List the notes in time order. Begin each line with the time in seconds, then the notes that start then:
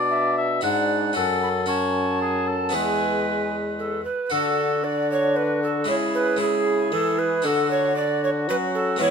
Already playing: B2 D4 F#4 D5
0.11 E5
0.38 E5
0.61 G#2 D4 F#4 D5 F#5
1.13 F#2 C#4 F#4 A4 F#5
1.43 B5
1.66 C#4 F#4 C#5 A5
2.21 G#4
2.47 A4
2.69 E2 B3 E4 G#4
2.74 E2 G#3 B4 G#5
3.79 A4
4.04 B4
4.30 D3 D4 F#4 A4
4.84 D4 F#4 D5
5.12 C#5
5.36 B4
5.64 A4
5.84 C#3 G#3 E4
5.88 C#3 E4 G#4 C#5
6.15 B4
6.37 G#3 E4
6.41 E4 G#4
6.92 E3 A4
7.19 B4
7.42 D3 D4 F#4 A4
7.46 F#4
7.70 C#5
7.96 D4 F#4 D5
8.24 C#5
8.48 F#3 C#4 B4
8.75 A4
8.96 G#3 B3 E4
9.01 E3 B3 E4 C#5